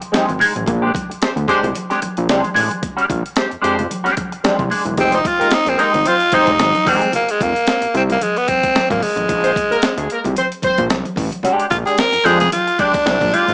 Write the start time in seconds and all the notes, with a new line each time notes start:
0.01 muted clean electric guitar stroke, closed hi-hat
0.12 G#1 G#3 D#4 G4, snare, closed hi-hat, high conga
0.28 G#1, muted clean electric guitar stroke, closed hi-hat, high conga
0.39 G#3 D#4 G#4, open hi-hat, low conga
0.55 A1, muted clean electric guitar stroke, closed hi-hat, high conga
0.66 A#1, muted clean electric guitar stroke, kick, closed hi-hat, muted conga, low conga
0.82 G#3 D4 G4
0.94 kick, closed hi-hat, high conga
1.09 D2, muted clean electric guitar stroke, closed hi-hat
1.21 G#3 G4 C5, snare, closed hi-hat, muted conga
1.36 D2, muted clean electric guitar stroke, closed hi-hat
1.48 G#3 D4 G4 C5, kick, snare, closed hi-hat, muted conga
1.63 C2, muted clean electric guitar stroke, closed hi-hat, low conga
1.75 muted clean electric guitar stroke, closed hi-hat, muted conga, high conga
1.90 G#3 D4 G4, snare, closed hi-hat
2.02 A#1, muted clean electric guitar stroke, closed hi-hat, muted conga, high conga
2.17 A#1, muted clean electric guitar stroke, closed hi-hat
2.29 C2 G#3 D4 G4, snare, closed hi-hat, high conga
2.44 muted clean electric guitar stroke, closed hi-hat, high conga
2.54 A1 G#3 D4 G#4, open hi-hat, muted conga, low conga
2.70 muted clean electric guitar stroke, closed hi-hat, high conga
2.82 muted clean electric guitar stroke, kick, closed hi-hat
2.97 G#3 D4 G4, closed hi-hat
3.09 A#1, kick, closed hi-hat, muted conga
3.23 muted clean electric guitar stroke, closed hi-hat
3.36 G#3 G4 C5, snare, closed hi-hat, muted conga
3.50 F2, muted clean electric guitar stroke, closed hi-hat
3.61 F2 G#3 D4 G4 C5, closed hi-hat
3.78 muted clean electric guitar stroke, closed hi-hat, low conga
3.90 muted clean electric guitar stroke, closed hi-hat, muted conga, high conga
4.04 G#3 D4 G4, snare, closed hi-hat
4.17 kick, closed hi-hat, muted conga, high conga
4.32 muted clean electric guitar stroke, closed hi-hat
4.44 C2 G#3 D4 G4, snare, closed hi-hat, muted conga, high conga
4.58 C2, muted clean electric guitar stroke, kick, closed hi-hat, high conga
4.70 G#3 D4 G#4, open hi-hat, low conga
4.85 E1, muted clean electric guitar stroke, closed hi-hat, high conga
4.97 F1 G#3 C4 D#4 G4, kick, closed hi-hat, low conga
5.12 C4 D#4 C5, closed hi-hat
5.24 F4, muted clean electric guitar stroke, kick, closed hi-hat, muted conga
5.39 A#1 G#3 A#3 D#4 G4 A#4, closed hi-hat
5.51 snare, closed hi-hat
5.55 D#4
5.66 A#1 G#3 C4 G#4, muted clean electric guitar stroke, closed hi-hat
5.78 G#3 A#3 D#4 G4 A#4, closed hi-hat, muted conga
5.94 G#1, muted clean electric guitar stroke, closed hi-hat, low conga
6.05 C4 F4 C5, muted clean electric guitar stroke, closed hi-hat, muted conga, high conga
6.20 muted clean electric guitar stroke, closed hi-hat
6.32 F1 G#3 C4 D#4 G4 C5, kick, closed hi-hat, muted conga, high conga
6.47 F1, muted clean electric guitar stroke, kick, closed hi-hat
6.59 G#1, muted clean electric guitar stroke, snare, closed hi-hat, high conga
6.75 muted clean electric guitar stroke, closed hi-hat, high conga
6.85 E1 G#3 D#4, kick, open hi-hat, low conga
6.89 C4 G4
7.01 muted clean electric guitar stroke, closed hi-hat, high conga
7.12 A#3, closed hi-hat, low conga
7.29 G#3, closed hi-hat
7.40 F1 A#3, kick, closed hi-hat, muted conga
7.56 closed hi-hat
7.67 snare, closed hi-hat
7.82 C2, closed hi-hat
7.94 C2 C4, closed hi-hat, muted conga
8.10 A#3, closed hi-hat, low conga
8.21 G#3, closed hi-hat, high conga
8.37 B3, closed hi-hat
8.48 C4, kick, closed hi-hat, muted conga, high conga
8.63 kick, closed hi-hat
8.75 G#1, snare, closed hi-hat, high conga
8.90 G#1 A#3, kick, closed hi-hat, high conga
9.00 G#3, open hi-hat, muted conga, low conga
9.16 A1, closed hi-hat, high conga
9.29 A#1, kick, closed hi-hat, low conga
9.43 C4 C5, closed hi-hat
9.56 kick, closed hi-hat, muted conga
9.70 D2 A#3 A#4, closed hi-hat
9.82 snare, closed hi-hat, muted conga
9.98 D2 G#3 G#4, closed hi-hat
10.10 A#3 A#4, closed hi-hat
10.24 C2, closed hi-hat, low conga
10.36 C4 C5, closed hi-hat, high conga
10.52 closed hi-hat
10.62 A#1 C4 C5, kick, closed hi-hat, high conga
10.78 A#1, kick, closed hi-hat
10.90 C2, snare, closed hi-hat, muted conga, high conga
11.05 closed hi-hat, high conga
11.16 A1, kick, open hi-hat, muted conga, low conga
11.32 closed hi-hat, high conga
11.43 G#3 D4 G4, closed hi-hat, low conga
11.60 closed hi-hat
11.70 A#1 F4, kick, closed hi-hat, muted conga
11.86 G#3 D4 G4 G#4, closed hi-hat
11.98 A#4, snare, closed hi-hat, muted conga
12.13 F2, muted clean electric guitar stroke, closed hi-hat
12.24 F2 G#3 D4 G4 G#4, snare, closed hi-hat, muted conga
12.40 G#4, muted clean electric guitar stroke, closed hi-hat, low conga
12.51 F4, muted clean electric guitar stroke, closed hi-hat, high conga
12.67 muted clean electric guitar stroke, closed hi-hat
12.79 G#3 D4 G4, kick, closed hi-hat, high conga
12.94 muted clean electric guitar stroke, kick, closed hi-hat
13.06 C2, muted clean electric guitar stroke, snare, closed hi-hat, muted conga, high conga
13.21 A#1, kick, closed hi-hat, high conga
13.32 G#3 D4 F4 G4, closed hi-hat, muted conga, low conga
13.47 G#1, muted clean electric guitar stroke, closed hi-hat, high conga